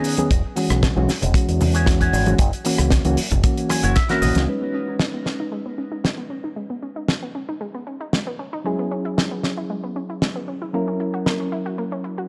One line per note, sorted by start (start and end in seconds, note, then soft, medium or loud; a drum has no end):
0.00 0.14 D#3 medium
0.00 0.15 B3 medium
0.00 0.15 C#4 medium
0.00 0.24 C#4 medium
0.00 0.25 D#4 medium
0.00 0.15 G#4 medium
0.00 0.25 G#4 loud
0.00 0.27 D#5 medium
0.00 open hi-hat loud
0.05 cabasa medium
0.17 0.29 D#3 medium
0.17 0.29 B3 medium
0.17 0.29 C#4 medium
0.17 0.29 G#4 medium
0.17 closed hi-hat medium
0.17 high conga medium
0.17 cabasa medium
0.31 0.41 E1 loud
0.31 kick loud
0.31 closed hi-hat medium
0.31 cabasa soft
0.56 0.93 E3 medium
0.56 0.93 G#3 medium
0.56 0.93 C#4 medium
0.56 0.93 F#4 medium
0.56 muted clean electric guitar stroke loud
0.56 open hi-hat loud
0.56 cabasa medium
0.69 0.90 B1 medium
0.69 muted clean electric guitar stroke soft
0.69 cross-stick medium
0.69 closed hi-hat medium
0.69 cabasa medium
0.83 kick loud
0.83 snare loud
0.83 closed hi-hat medium
0.83 cabasa soft
0.96 1.06 B1 medium
0.96 1.09 E3 medium
0.96 1.09 G#3 medium
0.96 1.10 C#4 medium
0.96 1.10 F#4 loud
0.96 high conga medium
1.09 muted fingered electric bass stroke soft
1.09 snare medium
1.09 open hi-hat medium
1.09 cabasa loud
1.22 1.32 E1 medium
1.22 closed hi-hat medium
1.22 low conga medium
1.22 cabasa medium
1.34 1.84 E3 medium
1.34 1.84 G#3 medium
1.34 1.84 C#4 medium
1.34 1.84 F#4 medium
1.34 muted fingered electric bass stroke soft
1.34 kick loud
1.34 closed hi-hat medium
1.34 cabasa soft
1.49 2.09 E2 medium
1.49 closed hi-hat medium
1.60 muted clean electric guitar stroke loud
1.60 open hi-hat loud
1.60 high conga medium
1.60 low conga medium
1.60 cabasa medium
1.74 1.87 C#4 medium
1.74 1.87 F#4 medium
1.74 1.88 G#4 loud
1.74 closed hi-hat medium
1.74 cabasa medium
1.86 2.23 E3 medium
1.86 2.23 G#3 medium
1.86 2.24 C#4 medium
1.86 2.24 F#4 medium
1.86 kick loud
1.86 snare loud
1.86 closed hi-hat loud
1.86 cabasa soft
2.00 2.33 C#4 medium
2.00 2.33 F#4 medium
2.00 2.34 G#4 loud
2.00 kick medium
2.00 closed hi-hat medium
2.13 2.34 G#1 loud
2.13 open hi-hat loud
2.13 cabasa loud
2.26 2.38 E3 medium
2.26 2.38 G#3 medium
2.26 2.38 C#4 medium
2.26 2.38 F#4 medium
2.26 closed hi-hat medium
2.26 high conga medium
2.26 cabasa medium
2.39 2.50 F#1 loud
2.39 kick loud
2.39 closed hi-hat medium
2.39 cabasa soft
2.53 closed hi-hat soft
2.64 3.02 E3 medium
2.64 3.02 A#3 medium
2.64 3.02 C#4 medium
2.64 3.02 F#4 loud
2.64 muted clean electric guitar stroke loud
2.64 open hi-hat loud
2.64 cabasa medium
2.78 2.99 C#2 medium
2.78 muted clean electric guitar stroke soft
2.78 cross-stick medium
2.78 closed hi-hat medium
2.78 cabasa medium
2.90 kick loud
2.90 snare loud
2.90 closed hi-hat medium
2.90 cabasa soft
3.05 3.15 C#2 medium
3.05 3.18 E3 medium
3.05 3.18 A#3 medium
3.05 3.18 C#4 medium
3.05 3.19 F#4 loud
3.05 closed hi-hat medium
3.05 high conga medium
3.17 muted fingered electric bass stroke soft
3.17 open hi-hat loud
3.17 cabasa medium
3.31 3.41 F#1 medium
3.31 kick medium
3.31 closed hi-hat medium
3.31 low conga medium
3.31 cabasa medium
3.43 3.93 E3 medium
3.43 3.93 A#3 medium
3.43 3.93 C#4 medium
3.43 3.93 F#4 loud
3.43 kick loud
3.43 closed hi-hat medium
3.43 cabasa soft
3.58 closed hi-hat medium
3.69 3.94 G#5 medium
3.69 muted clean electric guitar stroke loud
3.69 cross-stick medium
3.69 open hi-hat loud
3.69 high conga medium
3.69 cabasa medium
3.82 3.93 F#1 loud
3.82 3.95 E4 medium
3.82 3.96 F#4 medium
3.82 3.96 C#5 loud
3.82 closed hi-hat medium
3.82 cabasa medium
3.96 4.20 E5 medium
3.96 kick loud
3.96 snare medium
3.96 closed hi-hat medium
3.96 cabasa soft
4.09 4.46 E3 medium
4.09 4.47 A#3 medium
4.09 4.46 C#4 medium
4.09 4.41 E4 medium
4.09 4.42 F#4 medium
4.09 4.47 F#4 loud
4.09 4.42 A#4 loud
4.09 snare medium
4.09 closed hi-hat medium
4.22 4.33 A#1 medium
4.22 4.46 D#5 medium
4.22 open hi-hat medium
4.22 low conga medium
4.22 cabasa loud
4.35 4.45 C#2 medium
4.35 snare medium
4.35 closed hi-hat medium
4.35 high conga medium
4.35 cabasa medium
4.47 8.62 G#3 medium
4.47 4.53 G#3 medium
4.47 8.62 C#4 medium
4.47 8.63 D#4 medium
4.47 8.63 B4 medium
4.62 4.66 B3 medium
4.74 4.79 C#4 medium
4.88 4.95 D#4 medium
4.99 5.03 G#3 medium
4.99 snare loud
5.14 5.21 B3 medium
5.26 5.34 C#4 medium
5.26 snare medium
5.40 5.45 D#4 medium
5.52 5.57 G#3 medium
5.66 5.73 B3 medium
5.78 5.84 C#4 medium
5.92 5.97 D#4 medium
6.04 6.12 G#3 medium
6.04 snare loud
6.18 6.21 B3 medium
6.30 6.36 C#4 medium
6.44 6.49 D#4 medium
6.56 6.62 G#3 medium
6.70 6.75 B3 medium
6.83 6.88 C#4 medium
6.96 7.03 D#4 medium
7.08 7.12 G#3 medium
7.08 snare loud
7.23 7.30 B3 medium
7.35 7.43 C#4 medium
7.49 7.53 D#4 medium
7.61 7.66 G#3 medium
7.75 7.82 B3 medium
7.87 7.92 C#4 medium
8.01 8.05 D#4 medium
8.13 8.21 G#3 medium
8.13 snare loud
8.27 8.30 B3 medium
8.39 8.45 C#4 medium
8.53 8.58 D#4 medium
8.64 10.71 F#3 medium
8.64 8.71 G#3 medium
8.64 10.71 C#4 medium
8.64 10.71 E4 medium
8.64 10.72 G#4 medium
8.79 8.84 B3 medium
8.91 8.97 C#4 medium
9.05 9.12 E4 medium
9.18 9.21 G#3 medium
9.18 snare loud
9.31 9.38 B3 medium
9.43 9.52 C#4 medium
9.43 snare medium
9.57 9.62 E4 medium
9.70 9.75 G#3 medium
9.84 9.91 B3 medium
9.96 10.01 C#4 medium
10.10 10.14 E4 medium
10.22 10.30 G#3 medium
10.22 snare loud
10.36 10.38 B3 medium
10.48 10.53 C#4 medium
10.62 10.66 E4 medium
10.73 12.28 F#3 medium
10.73 10.79 A#3 medium
10.73 12.28 C#4 medium
10.73 12.28 E4 medium
10.73 12.28 A#4 medium
10.88 10.92 C#4 medium
11.00 11.05 E4 medium
11.14 11.21 F#4 medium
11.26 11.29 A#3 medium
11.26 snare medium
11.40 11.47 C#4 medium
11.52 11.60 E4 medium
11.66 11.71 F#4 medium
11.78 11.84 A#3 medium
11.92 11.99 C#4 medium
12.04 12.10 E4 medium
12.18 12.23 F#4 medium